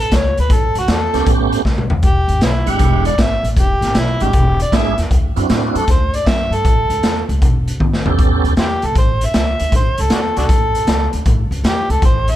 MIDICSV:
0, 0, Header, 1, 5, 480
1, 0, Start_track
1, 0, Tempo, 383632
1, 627, Time_signature, 4, 2, 24, 8
1, 15464, End_track
2, 0, Start_track
2, 0, Title_t, "Harmonica"
2, 0, Program_c, 0, 22
2, 0, Note_on_c, 0, 71, 90
2, 23, Note_off_c, 0, 71, 0
2, 23, Note_on_c, 0, 69, 90
2, 200, Note_on_c, 0, 73, 76
2, 218, Note_off_c, 0, 69, 0
2, 484, Note_off_c, 0, 73, 0
2, 502, Note_on_c, 0, 71, 73
2, 662, Note_on_c, 0, 69, 84
2, 681, Note_off_c, 0, 71, 0
2, 955, Note_off_c, 0, 69, 0
2, 980, Note_on_c, 0, 66, 74
2, 1118, Note_off_c, 0, 66, 0
2, 1146, Note_on_c, 0, 62, 59
2, 1146, Note_on_c, 0, 66, 59
2, 1146, Note_on_c, 0, 69, 85
2, 1245, Note_off_c, 0, 66, 0
2, 1252, Note_off_c, 0, 62, 0
2, 1591, Note_off_c, 0, 69, 0
2, 2579, Note_on_c, 0, 67, 95
2, 3028, Note_off_c, 0, 67, 0
2, 3038, Note_on_c, 0, 59, 50
2, 3038, Note_on_c, 0, 61, 50
2, 3038, Note_on_c, 0, 64, 71
2, 3121, Note_off_c, 0, 59, 0
2, 3148, Note_off_c, 0, 61, 0
2, 3372, Note_on_c, 0, 67, 69
2, 3391, Note_off_c, 0, 64, 0
2, 3824, Note_off_c, 0, 67, 0
2, 3830, Note_on_c, 0, 74, 73
2, 4019, Note_on_c, 0, 76, 84
2, 4037, Note_off_c, 0, 74, 0
2, 4313, Note_off_c, 0, 76, 0
2, 4488, Note_on_c, 0, 67, 86
2, 4983, Note_on_c, 0, 64, 85
2, 5002, Note_off_c, 0, 67, 0
2, 5293, Note_on_c, 0, 67, 80
2, 5312, Note_off_c, 0, 64, 0
2, 5746, Note_off_c, 0, 67, 0
2, 5780, Note_on_c, 0, 74, 75
2, 5952, Note_on_c, 0, 76, 81
2, 5971, Note_off_c, 0, 74, 0
2, 6241, Note_off_c, 0, 76, 0
2, 7233, Note_on_c, 0, 69, 86
2, 7367, Note_off_c, 0, 69, 0
2, 7388, Note_on_c, 0, 72, 71
2, 7690, Note_on_c, 0, 74, 82
2, 7709, Note_off_c, 0, 72, 0
2, 7848, Note_on_c, 0, 76, 85
2, 7867, Note_off_c, 0, 74, 0
2, 8185, Note_on_c, 0, 69, 86
2, 8204, Note_off_c, 0, 76, 0
2, 9101, Note_off_c, 0, 69, 0
2, 10757, Note_on_c, 0, 60, 62
2, 10757, Note_on_c, 0, 64, 62
2, 10757, Note_on_c, 0, 67, 89
2, 10846, Note_off_c, 0, 64, 0
2, 10850, Note_off_c, 0, 60, 0
2, 11083, Note_on_c, 0, 69, 68
2, 11102, Note_off_c, 0, 67, 0
2, 11215, Note_off_c, 0, 69, 0
2, 11236, Note_on_c, 0, 72, 68
2, 11578, Note_on_c, 0, 76, 80
2, 11596, Note_off_c, 0, 72, 0
2, 12168, Note_off_c, 0, 76, 0
2, 12212, Note_on_c, 0, 72, 78
2, 12518, Note_on_c, 0, 69, 74
2, 12537, Note_off_c, 0, 72, 0
2, 12652, Note_off_c, 0, 69, 0
2, 12678, Note_on_c, 0, 62, 55
2, 12678, Note_on_c, 0, 66, 55
2, 12678, Note_on_c, 0, 69, 79
2, 12755, Note_off_c, 0, 66, 0
2, 12766, Note_off_c, 0, 62, 0
2, 12968, Note_off_c, 0, 69, 0
2, 12986, Note_on_c, 0, 62, 64
2, 12986, Note_on_c, 0, 66, 64
2, 12986, Note_on_c, 0, 69, 92
2, 13072, Note_off_c, 0, 62, 0
2, 13089, Note_off_c, 0, 66, 0
2, 13902, Note_off_c, 0, 69, 0
2, 14606, Note_on_c, 0, 67, 92
2, 14891, Note_off_c, 0, 67, 0
2, 14901, Note_on_c, 0, 69, 77
2, 15043, Note_off_c, 0, 69, 0
2, 15079, Note_on_c, 0, 72, 76
2, 15394, Note_on_c, 0, 76, 93
2, 15413, Note_off_c, 0, 72, 0
2, 15464, Note_off_c, 0, 76, 0
2, 15464, End_track
3, 0, Start_track
3, 0, Title_t, "Tonewheel organ"
3, 0, Program_c, 1, 16
3, 1413, Note_on_c, 1, 57, 69
3, 1418, Note_on_c, 1, 59, 65
3, 1425, Note_on_c, 1, 61, 62
3, 1426, Note_on_c, 1, 67, 77
3, 2026, Note_off_c, 1, 57, 0
3, 2029, Note_off_c, 1, 59, 0
3, 2032, Note_off_c, 1, 61, 0
3, 2033, Note_off_c, 1, 67, 0
3, 3330, Note_on_c, 1, 64, 52
3, 3331, Note_on_c, 1, 56, 57
3, 3332, Note_on_c, 1, 62, 53
3, 3341, Note_on_c, 1, 78, 62
3, 3945, Note_off_c, 1, 56, 0
3, 3945, Note_off_c, 1, 64, 0
3, 3946, Note_off_c, 1, 62, 0
3, 3950, Note_off_c, 1, 78, 0
3, 5261, Note_on_c, 1, 64, 58
3, 5262, Note_on_c, 1, 56, 65
3, 5270, Note_on_c, 1, 62, 57
3, 5271, Note_on_c, 1, 66, 75
3, 5407, Note_off_c, 1, 64, 0
3, 5408, Note_off_c, 1, 56, 0
3, 5411, Note_off_c, 1, 62, 0
3, 5412, Note_off_c, 1, 66, 0
3, 5908, Note_on_c, 1, 56, 62
3, 5910, Note_on_c, 1, 64, 58
3, 5912, Note_on_c, 1, 62, 60
3, 5916, Note_on_c, 1, 68, 64
3, 6196, Note_off_c, 1, 56, 0
3, 6197, Note_off_c, 1, 64, 0
3, 6198, Note_off_c, 1, 62, 0
3, 6200, Note_off_c, 1, 68, 0
3, 6706, Note_on_c, 1, 60, 67
3, 6711, Note_on_c, 1, 64, 68
3, 6713, Note_on_c, 1, 66, 75
3, 6714, Note_on_c, 1, 62, 62
3, 7316, Note_off_c, 1, 60, 0
3, 7318, Note_off_c, 1, 64, 0
3, 7319, Note_off_c, 1, 66, 0
3, 7320, Note_off_c, 1, 62, 0
3, 10076, Note_on_c, 1, 59, 57
3, 10082, Note_on_c, 1, 61, 54
3, 10088, Note_on_c, 1, 67, 54
3, 10091, Note_on_c, 1, 69, 65
3, 10683, Note_off_c, 1, 59, 0
3, 10686, Note_off_c, 1, 61, 0
3, 10689, Note_off_c, 1, 67, 0
3, 10691, Note_off_c, 1, 69, 0
3, 15464, End_track
4, 0, Start_track
4, 0, Title_t, "Upright bass"
4, 0, Program_c, 2, 32
4, 157, Note_on_c, 2, 37, 79
4, 393, Note_off_c, 2, 37, 0
4, 480, Note_on_c, 2, 38, 76
4, 595, Note_off_c, 2, 38, 0
4, 624, Note_on_c, 2, 33, 80
4, 864, Note_off_c, 2, 33, 0
4, 944, Note_on_c, 2, 37, 83
4, 1064, Note_off_c, 2, 37, 0
4, 1100, Note_on_c, 2, 40, 75
4, 1342, Note_off_c, 2, 40, 0
4, 1425, Note_on_c, 2, 37, 83
4, 1544, Note_off_c, 2, 37, 0
4, 1593, Note_on_c, 2, 33, 77
4, 1949, Note_off_c, 2, 33, 0
4, 2066, Note_on_c, 2, 37, 73
4, 2305, Note_off_c, 2, 37, 0
4, 2384, Note_on_c, 2, 38, 75
4, 2504, Note_off_c, 2, 38, 0
4, 2548, Note_on_c, 2, 28, 76
4, 2786, Note_off_c, 2, 28, 0
4, 2850, Note_on_c, 2, 32, 80
4, 2975, Note_off_c, 2, 32, 0
4, 3018, Note_on_c, 2, 35, 78
4, 3260, Note_off_c, 2, 35, 0
4, 3333, Note_on_c, 2, 32, 76
4, 3457, Note_off_c, 2, 32, 0
4, 3506, Note_on_c, 2, 28, 87
4, 3865, Note_off_c, 2, 28, 0
4, 3986, Note_on_c, 2, 32, 77
4, 4225, Note_off_c, 2, 32, 0
4, 4297, Note_on_c, 2, 33, 79
4, 4419, Note_off_c, 2, 33, 0
4, 4462, Note_on_c, 2, 28, 87
4, 4703, Note_off_c, 2, 28, 0
4, 4770, Note_on_c, 2, 32, 82
4, 4895, Note_off_c, 2, 32, 0
4, 4938, Note_on_c, 2, 35, 79
4, 5181, Note_off_c, 2, 35, 0
4, 5269, Note_on_c, 2, 32, 88
4, 5388, Note_off_c, 2, 32, 0
4, 5431, Note_on_c, 2, 28, 86
4, 5789, Note_off_c, 2, 28, 0
4, 5909, Note_on_c, 2, 32, 74
4, 6149, Note_off_c, 2, 32, 0
4, 6232, Note_on_c, 2, 40, 73
4, 6350, Note_off_c, 2, 40, 0
4, 6394, Note_on_c, 2, 38, 84
4, 6632, Note_off_c, 2, 38, 0
4, 6713, Note_on_c, 2, 42, 85
4, 6831, Note_off_c, 2, 42, 0
4, 6882, Note_on_c, 2, 45, 83
4, 7117, Note_off_c, 2, 45, 0
4, 7194, Note_on_c, 2, 42, 80
4, 7312, Note_off_c, 2, 42, 0
4, 7360, Note_on_c, 2, 38, 83
4, 7716, Note_off_c, 2, 38, 0
4, 7838, Note_on_c, 2, 42, 77
4, 8076, Note_off_c, 2, 42, 0
4, 8138, Note_on_c, 2, 43, 72
4, 8262, Note_off_c, 2, 43, 0
4, 8320, Note_on_c, 2, 33, 86
4, 8557, Note_off_c, 2, 33, 0
4, 8631, Note_on_c, 2, 37, 80
4, 8751, Note_off_c, 2, 37, 0
4, 8789, Note_on_c, 2, 40, 80
4, 9031, Note_off_c, 2, 40, 0
4, 9120, Note_on_c, 2, 37, 87
4, 9237, Note_off_c, 2, 37, 0
4, 9280, Note_on_c, 2, 28, 80
4, 9637, Note_off_c, 2, 28, 0
4, 9758, Note_on_c, 2, 32, 76
4, 9997, Note_off_c, 2, 32, 0
4, 10081, Note_on_c, 2, 33, 72
4, 10198, Note_off_c, 2, 33, 0
4, 10244, Note_on_c, 2, 33, 75
4, 10481, Note_off_c, 2, 33, 0
4, 10562, Note_on_c, 2, 37, 79
4, 10679, Note_off_c, 2, 37, 0
4, 10719, Note_on_c, 2, 40, 76
4, 10958, Note_off_c, 2, 40, 0
4, 11050, Note_on_c, 2, 37, 85
4, 11164, Note_off_c, 2, 37, 0
4, 11207, Note_on_c, 2, 33, 77
4, 11562, Note_off_c, 2, 33, 0
4, 11691, Note_on_c, 2, 37, 76
4, 11925, Note_off_c, 2, 37, 0
4, 12015, Note_on_c, 2, 38, 76
4, 12127, Note_off_c, 2, 38, 0
4, 12159, Note_on_c, 2, 33, 86
4, 12398, Note_off_c, 2, 33, 0
4, 12489, Note_on_c, 2, 37, 80
4, 12604, Note_off_c, 2, 37, 0
4, 12641, Note_on_c, 2, 40, 87
4, 12879, Note_off_c, 2, 40, 0
4, 12975, Note_on_c, 2, 37, 82
4, 13087, Note_off_c, 2, 37, 0
4, 13128, Note_on_c, 2, 33, 86
4, 13483, Note_off_c, 2, 33, 0
4, 13601, Note_on_c, 2, 37, 76
4, 13839, Note_off_c, 2, 37, 0
4, 13932, Note_on_c, 2, 38, 77
4, 14045, Note_off_c, 2, 38, 0
4, 14094, Note_on_c, 2, 33, 93
4, 14327, Note_off_c, 2, 33, 0
4, 14399, Note_on_c, 2, 37, 84
4, 14517, Note_off_c, 2, 37, 0
4, 14560, Note_on_c, 2, 40, 90
4, 14797, Note_off_c, 2, 40, 0
4, 14882, Note_on_c, 2, 37, 91
4, 14998, Note_off_c, 2, 37, 0
4, 15044, Note_on_c, 2, 33, 89
4, 15399, Note_off_c, 2, 33, 0
4, 15464, End_track
5, 0, Start_track
5, 0, Title_t, "Drums"
5, 143, Note_on_c, 9, 42, 78
5, 147, Note_on_c, 9, 36, 63
5, 149, Note_on_c, 9, 38, 91
5, 268, Note_off_c, 9, 42, 0
5, 273, Note_off_c, 9, 36, 0
5, 275, Note_off_c, 9, 38, 0
5, 469, Note_on_c, 9, 42, 54
5, 594, Note_off_c, 9, 42, 0
5, 623, Note_on_c, 9, 42, 82
5, 625, Note_on_c, 9, 36, 101
5, 748, Note_off_c, 9, 42, 0
5, 750, Note_off_c, 9, 36, 0
5, 941, Note_on_c, 9, 42, 56
5, 1067, Note_off_c, 9, 42, 0
5, 1099, Note_on_c, 9, 42, 75
5, 1105, Note_on_c, 9, 38, 96
5, 1224, Note_off_c, 9, 42, 0
5, 1231, Note_off_c, 9, 38, 0
5, 1425, Note_on_c, 9, 42, 52
5, 1431, Note_on_c, 9, 38, 27
5, 1550, Note_off_c, 9, 42, 0
5, 1556, Note_off_c, 9, 38, 0
5, 1581, Note_on_c, 9, 42, 78
5, 1584, Note_on_c, 9, 36, 104
5, 1706, Note_off_c, 9, 42, 0
5, 1709, Note_off_c, 9, 36, 0
5, 1907, Note_on_c, 9, 42, 55
5, 2032, Note_off_c, 9, 42, 0
5, 2065, Note_on_c, 9, 36, 65
5, 2070, Note_on_c, 9, 38, 52
5, 2190, Note_off_c, 9, 36, 0
5, 2195, Note_off_c, 9, 38, 0
5, 2229, Note_on_c, 9, 47, 57
5, 2354, Note_off_c, 9, 47, 0
5, 2377, Note_on_c, 9, 43, 82
5, 2502, Note_off_c, 9, 43, 0
5, 2535, Note_on_c, 9, 42, 73
5, 2540, Note_on_c, 9, 36, 102
5, 2660, Note_off_c, 9, 42, 0
5, 2665, Note_off_c, 9, 36, 0
5, 2859, Note_on_c, 9, 42, 53
5, 2985, Note_off_c, 9, 42, 0
5, 3018, Note_on_c, 9, 42, 73
5, 3024, Note_on_c, 9, 38, 94
5, 3143, Note_off_c, 9, 42, 0
5, 3149, Note_off_c, 9, 38, 0
5, 3336, Note_on_c, 9, 42, 49
5, 3461, Note_off_c, 9, 42, 0
5, 3493, Note_on_c, 9, 42, 78
5, 3497, Note_on_c, 9, 36, 97
5, 3618, Note_off_c, 9, 42, 0
5, 3622, Note_off_c, 9, 36, 0
5, 3817, Note_on_c, 9, 42, 60
5, 3942, Note_off_c, 9, 42, 0
5, 3980, Note_on_c, 9, 36, 69
5, 3981, Note_on_c, 9, 42, 75
5, 3987, Note_on_c, 9, 38, 98
5, 4105, Note_off_c, 9, 36, 0
5, 4106, Note_off_c, 9, 42, 0
5, 4112, Note_off_c, 9, 38, 0
5, 4310, Note_on_c, 9, 42, 61
5, 4436, Note_off_c, 9, 42, 0
5, 4461, Note_on_c, 9, 36, 92
5, 4461, Note_on_c, 9, 42, 82
5, 4586, Note_off_c, 9, 36, 0
5, 4586, Note_off_c, 9, 42, 0
5, 4782, Note_on_c, 9, 42, 56
5, 4788, Note_on_c, 9, 38, 27
5, 4907, Note_off_c, 9, 42, 0
5, 4914, Note_off_c, 9, 38, 0
5, 4937, Note_on_c, 9, 42, 78
5, 4943, Note_on_c, 9, 38, 100
5, 5062, Note_off_c, 9, 42, 0
5, 5068, Note_off_c, 9, 38, 0
5, 5258, Note_on_c, 9, 42, 57
5, 5383, Note_off_c, 9, 42, 0
5, 5419, Note_on_c, 9, 42, 80
5, 5425, Note_on_c, 9, 36, 101
5, 5544, Note_off_c, 9, 42, 0
5, 5550, Note_off_c, 9, 36, 0
5, 5751, Note_on_c, 9, 42, 58
5, 5876, Note_off_c, 9, 42, 0
5, 5909, Note_on_c, 9, 36, 68
5, 5914, Note_on_c, 9, 42, 72
5, 5920, Note_on_c, 9, 38, 102
5, 6035, Note_off_c, 9, 36, 0
5, 6039, Note_off_c, 9, 42, 0
5, 6046, Note_off_c, 9, 38, 0
5, 6228, Note_on_c, 9, 42, 55
5, 6235, Note_on_c, 9, 38, 29
5, 6353, Note_off_c, 9, 42, 0
5, 6360, Note_off_c, 9, 38, 0
5, 6391, Note_on_c, 9, 36, 92
5, 6394, Note_on_c, 9, 42, 71
5, 6516, Note_off_c, 9, 36, 0
5, 6519, Note_off_c, 9, 42, 0
5, 6713, Note_on_c, 9, 42, 47
5, 6838, Note_off_c, 9, 42, 0
5, 6875, Note_on_c, 9, 42, 78
5, 6881, Note_on_c, 9, 38, 97
5, 7000, Note_off_c, 9, 42, 0
5, 7006, Note_off_c, 9, 38, 0
5, 7200, Note_on_c, 9, 42, 54
5, 7325, Note_off_c, 9, 42, 0
5, 7351, Note_on_c, 9, 42, 73
5, 7356, Note_on_c, 9, 36, 106
5, 7358, Note_on_c, 9, 38, 28
5, 7476, Note_off_c, 9, 42, 0
5, 7481, Note_off_c, 9, 36, 0
5, 7483, Note_off_c, 9, 38, 0
5, 7677, Note_on_c, 9, 42, 58
5, 7803, Note_off_c, 9, 42, 0
5, 7839, Note_on_c, 9, 36, 70
5, 7841, Note_on_c, 9, 42, 69
5, 7847, Note_on_c, 9, 38, 102
5, 7964, Note_off_c, 9, 36, 0
5, 7966, Note_off_c, 9, 42, 0
5, 7972, Note_off_c, 9, 38, 0
5, 8164, Note_on_c, 9, 42, 55
5, 8289, Note_off_c, 9, 42, 0
5, 8318, Note_on_c, 9, 36, 97
5, 8318, Note_on_c, 9, 42, 71
5, 8443, Note_off_c, 9, 36, 0
5, 8444, Note_off_c, 9, 42, 0
5, 8633, Note_on_c, 9, 42, 58
5, 8758, Note_off_c, 9, 42, 0
5, 8797, Note_on_c, 9, 42, 79
5, 8803, Note_on_c, 9, 38, 105
5, 8922, Note_off_c, 9, 42, 0
5, 8928, Note_off_c, 9, 38, 0
5, 9125, Note_on_c, 9, 42, 55
5, 9250, Note_off_c, 9, 42, 0
5, 9282, Note_on_c, 9, 36, 104
5, 9282, Note_on_c, 9, 42, 80
5, 9407, Note_off_c, 9, 36, 0
5, 9407, Note_off_c, 9, 42, 0
5, 9604, Note_on_c, 9, 42, 60
5, 9729, Note_off_c, 9, 42, 0
5, 9763, Note_on_c, 9, 36, 66
5, 9763, Note_on_c, 9, 48, 55
5, 9888, Note_off_c, 9, 36, 0
5, 9888, Note_off_c, 9, 48, 0
5, 9928, Note_on_c, 9, 38, 60
5, 10053, Note_off_c, 9, 38, 0
5, 10082, Note_on_c, 9, 43, 85
5, 10207, Note_off_c, 9, 43, 0
5, 10242, Note_on_c, 9, 42, 73
5, 10243, Note_on_c, 9, 36, 101
5, 10367, Note_off_c, 9, 42, 0
5, 10368, Note_off_c, 9, 36, 0
5, 10569, Note_on_c, 9, 42, 52
5, 10694, Note_off_c, 9, 42, 0
5, 10720, Note_on_c, 9, 42, 69
5, 10726, Note_on_c, 9, 38, 101
5, 10845, Note_off_c, 9, 42, 0
5, 10851, Note_off_c, 9, 38, 0
5, 11037, Note_on_c, 9, 42, 52
5, 11162, Note_off_c, 9, 42, 0
5, 11202, Note_on_c, 9, 42, 73
5, 11205, Note_on_c, 9, 36, 98
5, 11327, Note_off_c, 9, 42, 0
5, 11330, Note_off_c, 9, 36, 0
5, 11524, Note_on_c, 9, 42, 61
5, 11650, Note_off_c, 9, 42, 0
5, 11683, Note_on_c, 9, 42, 70
5, 11689, Note_on_c, 9, 38, 96
5, 11808, Note_off_c, 9, 42, 0
5, 11814, Note_off_c, 9, 38, 0
5, 12005, Note_on_c, 9, 42, 58
5, 12130, Note_off_c, 9, 42, 0
5, 12164, Note_on_c, 9, 36, 98
5, 12164, Note_on_c, 9, 42, 84
5, 12289, Note_off_c, 9, 36, 0
5, 12289, Note_off_c, 9, 42, 0
5, 12482, Note_on_c, 9, 42, 61
5, 12607, Note_off_c, 9, 42, 0
5, 12635, Note_on_c, 9, 42, 80
5, 12641, Note_on_c, 9, 38, 101
5, 12760, Note_off_c, 9, 42, 0
5, 12766, Note_off_c, 9, 38, 0
5, 12969, Note_on_c, 9, 42, 62
5, 13095, Note_off_c, 9, 42, 0
5, 13126, Note_on_c, 9, 36, 103
5, 13127, Note_on_c, 9, 42, 80
5, 13251, Note_off_c, 9, 36, 0
5, 13253, Note_off_c, 9, 42, 0
5, 13448, Note_on_c, 9, 42, 60
5, 13574, Note_off_c, 9, 42, 0
5, 13602, Note_on_c, 9, 42, 83
5, 13608, Note_on_c, 9, 38, 94
5, 13727, Note_off_c, 9, 42, 0
5, 13734, Note_off_c, 9, 38, 0
5, 13923, Note_on_c, 9, 42, 56
5, 14048, Note_off_c, 9, 42, 0
5, 14083, Note_on_c, 9, 42, 74
5, 14086, Note_on_c, 9, 36, 102
5, 14208, Note_off_c, 9, 42, 0
5, 14211, Note_off_c, 9, 36, 0
5, 14413, Note_on_c, 9, 42, 51
5, 14538, Note_off_c, 9, 42, 0
5, 14568, Note_on_c, 9, 42, 71
5, 14574, Note_on_c, 9, 38, 97
5, 14693, Note_off_c, 9, 42, 0
5, 14699, Note_off_c, 9, 38, 0
5, 14888, Note_on_c, 9, 42, 52
5, 15014, Note_off_c, 9, 42, 0
5, 15042, Note_on_c, 9, 36, 112
5, 15043, Note_on_c, 9, 42, 80
5, 15167, Note_off_c, 9, 36, 0
5, 15168, Note_off_c, 9, 42, 0
5, 15360, Note_on_c, 9, 42, 52
5, 15464, Note_off_c, 9, 42, 0
5, 15464, End_track
0, 0, End_of_file